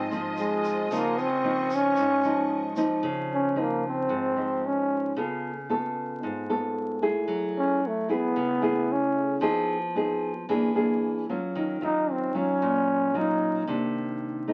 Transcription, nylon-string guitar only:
0.00 0.88 G#2 medium
0.11 0.87 F3 soft
0.11 0.87 C4 medium
0.11 0.87 D#4 medium
0.90 1.94 C#3 medium
0.90 1.25 F3 medium
0.90 1.25 C4 medium
0.90 1.25 D#4 medium
1.44 1.97 F3 medium
1.44 1.97 C4 medium
1.44 1.97 D#4 medium
1.97 3.01 G#2 medium
2.24 2.73 F3 medium
2.24 2.73 D#4 medium
2.76 3.54 F3 medium
2.76 3.54 C4 medium
2.76 3.54 D#4 medium
3.03 4.07 C#3 medium
3.55 4.32 F3 medium
3.55 4.32 C4 medium
3.55 4.32 D#4 medium
4.09 5.13 G#2 medium
4.36 5.12 F3 medium
4.36 5.12 D#4 medium
5.17 6.20 C#3 medium
5.17 5.51 B3 medium
5.17 5.51 F4 medium
5.17 5.51 A4 medium
5.69 6.45 B3 medium
5.69 6.45 F4 medium
5.69 6.45 A4 medium
6.23 7.26 G#2 medium
6.49 6.98 B3 medium
6.49 6.98 F4 soft
6.49 6.98 A4 medium
7.02 7.78 A3 medium
7.02 7.78 E4 medium
7.02 7.78 G#4 medium
7.28 8.32 F#3 medium
8.08 8.57 A3 medium
8.08 8.58 E4 medium
8.08 8.58 G#4 medium
8.36 9.39 C#3 medium
8.62 9.37 A3 medium
8.62 9.38 E4 medium
8.62 9.38 G#4 medium
9.41 10.45 F3 medium
9.41 9.75 B3 medium
9.41 9.76 D#4 medium
9.41 9.76 G#4 medium
9.95 10.31 B3 medium
9.95 10.31 D#4 medium
9.95 10.31 G#4 medium
10.49 11.29 E3 medium
10.49 10.71 A#3 medium
10.49 10.71 D4 medium
10.49 10.71 G#4 medium
10.75 11.24 A#3 medium
10.75 11.24 D4 medium
10.75 11.24 G#4 medium
11.29 11.80 F#3 medium
11.29 11.80 C#4 medium
11.29 11.81 F4 medium
11.55 12.59 D#3 medium
11.81 12.30 F#3 medium
11.81 12.30 C#4 medium
11.81 12.30 F4 medium
12.34 13.10 F#3 medium
12.34 13.10 C#4 medium
12.34 13.10 F4 medium
12.62 13.65 A#2 medium
13.14 13.63 F#3 medium
13.14 13.63 C#4 medium
13.14 13.63 F4 medium
13.67 14.53 C3 medium
13.67 14.43 D#3 medium
13.67 14.43 A#3 medium
13.67 14.43 D4 medium
14.48 14.53 A3 medium
14.48 14.53 D#4 medium

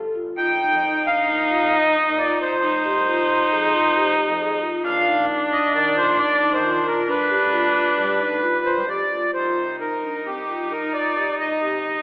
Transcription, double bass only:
0.00 0.13 G1 medium
0.16 0.36 A1 medium
0.38 0.58 A#1 medium
0.72 0.92 F2 medium
1.28 1.58 A#2 medium
1.62 1.82 F2 medium
1.84 1.94 A#1 medium
2.07 2.27 A#2 medium
2.62 2.82 F1 medium
2.96 3.16 C2 medium
3.50 3.81 F2 medium
3.84 4.04 C2 medium
4.07 4.17 F1 medium
4.29 4.48 F2 medium
4.85 5.04 D#2 medium
5.19 5.38 A#1 medium
5.73 6.03 D#3 medium
6.06 6.26 A#1 medium
6.29 6.39 D#2 medium
6.52 6.71 D#3 loud
7.08 7.27 G2 medium
7.42 7.61 D2 medium
7.97 8.27 G3 medium
8.31 8.51 D2 medium
8.54 8.64 G2 medium
8.76 8.87 G3 medium
8.88 9.09 F2 medium
9.11 9.32 D2 medium
9.34 9.44 C2 medium
9.56 9.97 C3 medium
10.02 10.53 C2 medium
10.59 10.80 G2 medium
11.17 11.37 G2 medium
11.39 11.59 A#1 medium
11.62 11.72 C3 medium
11.84 12.02 A#1 medium

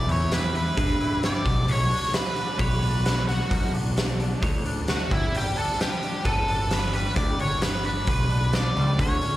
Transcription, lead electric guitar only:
0.12 0.31 C#5 medium
0.34 0.54 B4 medium
0.57 1.20 B4 medium
1.25 1.71 D5 medium
1.71 2.12 C#5 medium
2.15 2.58 B4 medium
2.59 3.24 B4 medium
3.28 3.71 F#4 medium
4.89 5.10 F#4 medium
5.12 5.35 E4 medium
5.37 5.58 G4 medium
5.58 5.79 A4 medium
5.81 6.26 G4 medium
6.26 6.73 A4 medium
6.73 6.93 B4 medium
6.94 7.16 B4 medium
7.16 7.40 D5 loud
7.41 7.62 C#5 medium
7.63 7.85 B4 medium
7.86 8.55 B4 medium
8.55 9.00 D5 medium
9.01 9.37 C#5 medium

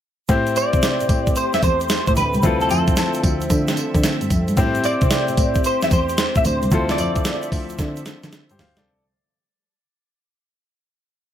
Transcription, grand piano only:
0.29 2.39 C4 medium
0.29 2.40 E4 medium
0.29 2.40 G4 medium
0.29 2.40 C5 medium
2.43 4.53 C4 medium
2.43 4.54 E4 medium
2.43 4.54 F4 medium
2.43 4.54 A4 medium
4.57 6.68 C4 medium
4.57 6.68 E4 medium
4.57 6.68 G4 medium
4.57 6.69 C5 medium
6.71 8.82 C4 medium
6.71 8.82 E4 medium
6.71 8.83 F4 medium
6.71 8.30 A4 medium
8.51 8.59 G4 medium
8.51 8.59 C5 medium
8.60 8.77 C5 medium
8.60 8.77 F5 medium
8.78 9.03 A4 medium
8.78 9.03 D5 medium

